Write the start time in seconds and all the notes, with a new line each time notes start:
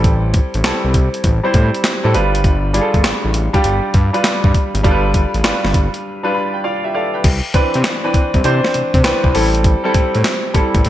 Already playing: A1 G3 C4 E4 A4
0.04 kick, closed hi-hat
0.34 kick, closed hi-hat
0.54 A1, closed hi-hat
0.64 C2 G3 C4 E4 A4, snare, clap, closed hi-hat
0.85 C2
0.94 kick, closed hi-hat
1.14 closed hi-hat
1.24 A1, kick, closed hi-hat
1.43 G3 C4 E4 C5
1.54 A2, kick, closed hi-hat
1.74 closed hi-hat
1.84 snare, clap, closed hi-hat
2.04 A2 G3 C4 E4 A4
2.14 G1 G3 D4 F4 B4, closed hi-hat
2.35 closed hi-hat
2.44 kick, closed hi-hat
2.74 G3 D4 F4 G#4, closed hi-hat
2.81 A4
2.94 G1, kick, closed hi-hat
3.04 A1, snare, clap, closed hi-hat
3.25 A1
3.34 closed hi-hat
3.53 G3 D4 F4 G4, kick, closed hi-hat
3.64 G1, closed hi-hat
3.94 G2, kick, closed hi-hat
4.13 G3 D4 F4 B4, closed hi-hat
4.24 snare, clap, closed hi-hat
4.44 G2, kick
4.54 kick, closed hi-hat
4.74 G#1, closed hi-hat
4.83 G1 G3 D4 F4 A4, kick, closed hi-hat
4.91 B4
5.14 kick, closed hi-hat
5.34 A1, closed hi-hat
5.44 G1 G3 D4 F4 B4, snare, clap, closed hi-hat
5.64 G1, snare
5.74 kick, closed hi-hat
5.94 closed hi-hat
6.23 G3 D4 F4 B4
6.34 B5
6.54 G5
6.64 F4 D5 F5
6.84 G4 E5
6.94 A4 D5 F5
7.14 B4 G5
7.24 C2, kick, closed hi-hat, crash
7.54 C3 E3 C4 D4 B4, kick, closed hi-hat
7.74 C3, closed hi-hat
7.84 snare, clap, closed hi-hat
8.03 E3 C4 D4 B4
8.14 C2, kick, closed hi-hat
8.34 C2, kick, closed hi-hat
8.44 C3 E3 C4 D4 C5, closed hi-hat
8.64 snare
8.74 C3, closed hi-hat
8.94 C3, kick, closed hi-hat
9.03 C2 E3 C4 D4 B4, snare, clap, closed hi-hat
9.24 C2, kick
9.34 A1 G3 C4 E4 A4, open hi-hat
9.55 closed hi-hat
9.64 kick, closed hi-hat
9.84 G3 C4 E4 A4
9.94 A2, kick, closed hi-hat
10.15 A2, closed hi-hat
10.24 snare, clap, closed hi-hat
10.54 A1 G3 C4 E4 A4, kick, closed hi-hat
10.75 A1, kick, closed hi-hat
10.85 A2, closed hi-hat